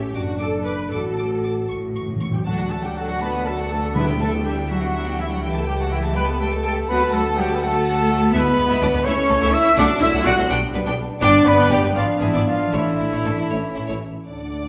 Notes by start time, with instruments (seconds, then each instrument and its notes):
Already playing: timpani A2, french horn section C#4, violin section G4, viola section G4
0.14 double bass section F#1, cello section F#2, french horn section D4, violin section F#4 D6, viola section F#4
0.40 violin section A4 D6, viola section A4
0.65 violin section B4 D6, viola section B4
0.91 double bass section A1, cello section A2, timpani A2, french horn section F#4, violin section A4 D6, viola section A4
1.18 violin section D6
1.44 violin section D6
1.69 double bass section A1, timpani A2, cello section A2, violin section C#6
1.77 timpani A2
1.85 timpani A2
1.93 timpani A2, violin section C#6
2.01 timpani A2
2.08 timpani A2
2.16 timpani A2
2.21 timpani A2, violin section C#6
2.31 timpani A2, cello section G3, trumpet section G4, flute G5, violin section G5
2.45 double bass section D2, french horn section F#3 D4, cello section F#3, trumpet section F#4, viola section F#4 A4, flute F#5, violin section F#5 A5
2.59 viola section D4 F#4, violin section F#5
2.71 cello section A3, viola section F#4 A4, trumpet section A4, flute A5, violin section A5
2.83 cello section G3, viola section D4 F#4, trumpet section G4, violin section F#5 G5, flute G5
2.96 cello section F#3, viola section F#4 A4, trumpet section F#4, violin section F#5 A5, flute F#5
3.09 viola section D4 F#4, violin section F#5
3.20 cello section B3, viola section F#4 A4, trumpet section B4, violin section A5 B5, flute B5
3.34 viola section D4 F#4, violin section F#5
3.45 cello section A3, viola section F#4 A4, trumpet section A4, violin section A5, flute A5
3.59 viola section D4 F#4, violin section F#5
3.70 cello section A3, viola section F#4 A4, trumpet section A4, violin section A5, flute A5
3.83 viola section D4 F#4, violin section F#5
3.95 timpani D3, french horn section G3 E4, cello section B3, viola section D4 E4, trumpet section B4, violin section E5 B5, flute B5
4.08 viola section B3 D4, violin section G5
4.20 cello section A3, viola section D4 E4, trumpet section A4, violin section E5 A5, flute A5
4.33 viola section B3 D4, violin section G5
4.44 cello section G3, viola section D4 E4, trumpet section G4, violin section E5 G5, flute G5
4.57 viola section B3 D4, violin section G5
4.69 cello section F#3, viola section D4 E4, trumpet section F#4, violin section E5 F#5, flute F#5
4.82 viola section B3 D4, violin section G5
4.93 viola section D4 E4, violin section E5
5.06 viola section B3 D4, violin section G5
5.18 cello section E3, viola section D4 E4, trumpet section E4, violin section E5, flute E5
5.30 cello section F#3, viola section B3 D4, trumpet section F#4, flute F#5, violin section F#5 G5
5.42 double bass section C#2, cello section E3, viola section G3 G4, french horn section A3 G4, trumpet section E4, violin section E5 G5, flute E5
5.55 viola section A3 A4, violin section A5
5.66 cello section G3, viola section G3 G4, trumpet section G4, violin section G5, flute G5
5.79 cello section F#3, viola section A3 A4, trumpet section F#4, violin section F#5 A5, flute F#5
5.91 cello section E3, viola section G3 G4, trumpet section E4, flute E5, violin section E5 G5
6.03 viola section A3 A4, violin section A5
6.15 viola section G3 G4, cello section B3, trumpet section B4, violin section G5 B5, flute B5
6.28 viola section A3 A4, violin section A5
6.40 viola section G3 G4, cello section A3, trumpet section A4, violin section G5 A5, flute A5
6.52 viola section A3 A4, violin section A5
6.64 viola section G3 G4, cello section A3, trumpet section A4, violin section G5 A5, flute A5
6.76 viola section A3 A4, violin section A5
6.88 double bass section D2, viola section F#3 F#4, cello section B3, french horn section F#4, trumpet section B4, violin section F#5 B5, flute B5
7.00 viola section A3 A4, violin section A5
7.12 viola section F#3 F#4, cello section A3, trumpet section A4, violin section F#5 A5, flute A5
7.25 viola section A3 A4, violin section A5
7.37 viola section F#3 F#4, cello section G3, trumpet section G4, violin section F#5 G5, flute G5
7.49 viola section A3 A4, violin section A5
7.54 trumpet section B4
7.60 viola section F#3 F#4, cello section A3, trumpet section A4, violin section F#5 A5, flute A5
7.74 viola section A3 A4, violin section A5
7.85 viola section F#3 F#4, violin section F#5
7.97 viola section A3 A4, violin section A5
8.08 viola section F#3 F#4, violin section F#5
8.21 viola section A3 A4, violin section A5
8.32 double bass section D2, french horn section G#3 E4, viola section G#3 E4, cello section B3, trumpet section B4, violin section E5 B5, flute B5
8.57 double bass section D2, viola section G#3 B3, violin section B4
8.69 double bass section D2, viola section G#3 E4, violin section E5
8.81 double bass section D2, viola section G#3 D4, violin section D5
8.93 double bass section D2, viola section G#3 B3, violin section B4
9.05 double bass section C#2, french horn section A3, viola section A3 E4, cello section C#4, trumpet section C#5, violin section E5 C#6, flute C#6
9.29 double bass section C#2, viola section A3, violin section A4
9.41 double bass section C#2, viola section A3 E4, violin section E5
9.53 cello section E4, trumpet section E5, violin section E6, flute E6
9.76 double bass section C2, french horn section F#3 D4, viola section A3 D4, cello section D4, trumpet section D5, violin section F#5 D6, flute D6
10.00 double bass section C2, viola section A3, cello section E4, violin section C5 E6, trumpet section E5, flute E6
10.13 double bass section C2, viola section A3 D4, violin section F#5
10.24 double bass section C2, viola section A3 C4, cello section F#4, violin section D5 F#6, trumpet section F#5, flute F#6
10.37 double bass section C2, viola section A3, violin section C5
10.50 double bass section B1, french horn section G3, viola section B3 D4, violin section G5
10.74 double bass section B1, viola section G3 B3, violin section B4
10.86 double bass section B1, viola section B3 D4, violin section G5
11.21 double bass section G1, french horn section B3, viola section B3 D4, cello section D4, trumpet section D5, violin section G5 D6, flute D6
11.45 double bass section G1, viola section G3 B3, cello section B3, trumpet section B4, violin section B4 B5, flute B5
11.58 double bass section G1, viola section B3 D4, violin section G5
11.70 double bass section G1, cello section G3, viola section B3, trumpet section G4, violin section D5 G5, flute G5
11.82 double bass section G1, viola section G3 B3, violin section B4
11.95 double bass section G#1, cello section F3, viola section B3 D4, trumpet section F4, violin section D5 F5, flute F5
12.19 double bass section G#1, cello section E3, viola section G#3 B3, trumpet section E4, violin section G#4 E5, flute E5
12.34 double bass section G#1, viola section B3 D4, violin section D5
12.46 cello section F3, trumpet section F4, violin section F5, flute F5
12.72 double bass section A1, cello section E3, viola section A3 E4, french horn section A3, trumpet section E4, violin section C#5 E5, flute E5
12.99 double bass section A1, viola section A3, violin section E4
13.11 double bass section A1, viola section A3 E4, violin section C#5
13.25 double bass section A1, viola section A3 C#4, violin section A4
13.37 double bass section A1, viola section A3, violin section E4
13.49 double bass section A1, viola section A3 E4, french horn section C#4, violin section C#5
13.75 double bass section A1, viola section A3, violin section E4
13.88 double bass section A1, viola section A3 E4, violin section C#5
14.27 cello section D2, double bass section D2, viola section A3 A4, french horn section D4, flute D5, violin section D5 F#5